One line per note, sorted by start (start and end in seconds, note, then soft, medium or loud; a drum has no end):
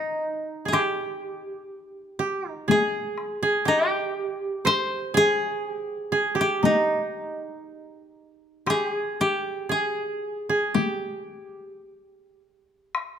0.00 2.08 D#4 medium
0.00 2.09 D#4 medium
0.00 0.28 G4 medium
0.65 0.78 G#4 soft
0.65 0.79 G#4 medium
0.72 2.19 G4 medium
0.72 2.77 G4 medium
0.72 taiko rim soft
2.19 2.50 G4 medium
2.50 2.74 D#4 medium
2.68 3.42 G#4 medium
2.68 3.74 G#4 medium
2.68 taiko high medium
3.18 taiko rim soft
3.43 3.71 G#4 medium
3.65 3.90 D#4 medium
3.65 5.20 G4 medium
3.90 5.23 G4 medium
4.65 6.36 C5 medium
4.65 6.38 C5 medium
4.65 taiko rim soft
5.14 5.68 G#4 medium
5.14 6.47 G#4 medium
5.68 6.12 G4 medium
6.12 6.41 G#4 medium
6.35 8.39 G4 medium
6.41 8.45 G4 medium
6.63 8.97 D#4 medium
6.63 9.00 D#4 medium
6.63 taiko high medium
8.66 8.90 G4 medium
8.66 9.27 G#4 medium
8.66 taiko rim medium
8.90 9.69 G#4 medium
9.21 9.78 G4 medium
9.69 10.49 G#4 medium
9.69 10.80 G#4 medium
10.49 10.81 G#4 medium
10.74 12.78 G4 medium
10.74 12.79 G4 medium
10.74 taiko high medium
12.95 taiko rim medium